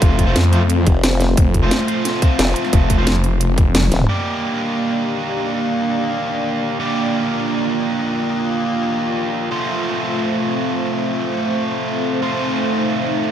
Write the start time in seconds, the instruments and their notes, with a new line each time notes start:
Already playing: distorted electric guitar A3 F4 C5, analog synth pad A3 C4 F4 C5
0.02 detuned saw bass F1, kick, closed hi-hat
0.19 kick, closed hi-hat
0.27 distorted electric guitar A3 F4 C5
0.36 detuned saw bass F2, snare, closed hi-hat
0.44 snare
0.52 distorted electric guitar A3 F4 C5, closed hi-hat
0.70 closed hi-hat
0.87 wobble bass F1, kick, closed hi-hat
1.03 snare, closed hi-hat
1.20 snare, closed hi-hat
1.37 detuned saw bass F1, kick, closed hi-hat
1.54 kick, closed hi-hat
1.63 distorted electric guitar A3 F4 C5
1.71 snare, closed hi-hat
1.80 snare
1.88 distorted electric guitar A3 F4 C5, closed hi-hat
2.05 snare, closed hi-hat
2.22 kick, closed hi-hat
2.39 wobble bass F1, snare, closed hi-hat
2.56 closed hi-hat
2.65 snare
2.73 detuned saw bass F1, kick, closed hi-hat
2.90 kick, closed hi-hat
2.98 distorted electric guitar A3 F4 C5
3.07 detuned saw bass F1, snare, closed hi-hat
3.15 snare
3.24 closed hi-hat
3.41 closed hi-hat
3.58 kick, closed hi-hat
3.75 snare, closed hi-hat, high tom
3.83 high tom
3.92 wobble bass D#1, snare, closed hi-hat
4.00 mid tom
4.08 distorted electric guitar A#3 G4 D5, analog synth pad A#3 D4 G4 D5, closed hi-hat
4.26 closed hi-hat
4.42 closed hi-hat
4.59 closed hi-hat
4.76 closed hi-hat
4.93 closed hi-hat
5.10 closed hi-hat
5.27 closed hi-hat
5.44 closed hi-hat
5.61 closed hi-hat
5.78 closed hi-hat
5.95 closed hi-hat
6.12 closed hi-hat
6.29 closed hi-hat
6.46 closed hi-hat
6.63 closed hi-hat
6.80 distorted electric guitar A#3 G4 D5, analog synth pad F4, closed hi-hat
6.97 closed hi-hat
7.14 closed hi-hat
7.31 closed hi-hat
7.48 closed hi-hat
7.65 closed hi-hat
7.81 closed hi-hat
7.98 closed hi-hat
8.15 closed hi-hat
8.32 closed hi-hat
8.49 closed hi-hat
8.66 closed hi-hat
8.83 closed hi-hat
9.00 closed hi-hat
9.17 closed hi-hat
9.34 closed hi-hat
9.51 distorted electric guitar A3 F4 C5, analog synth pad A3 C4 C5, closed hi-hat
9.68 closed hi-hat
9.85 closed hi-hat
10.02 closed hi-hat
10.19 closed hi-hat
10.36 closed hi-hat
10.53 closed hi-hat
10.70 closed hi-hat
10.87 closed hi-hat
11.04 closed hi-hat
11.20 closed hi-hat
11.37 closed hi-hat
11.54 closed hi-hat
11.71 closed hi-hat
11.88 closed hi-hat
12.05 closed hi-hat
12.22 distorted electric guitar A3 F4 C5, analog synth pad D#4, closed hi-hat
12.39 closed hi-hat
12.56 closed hi-hat
12.73 closed hi-hat
12.90 closed hi-hat
13.07 closed hi-hat
13.24 closed hi-hat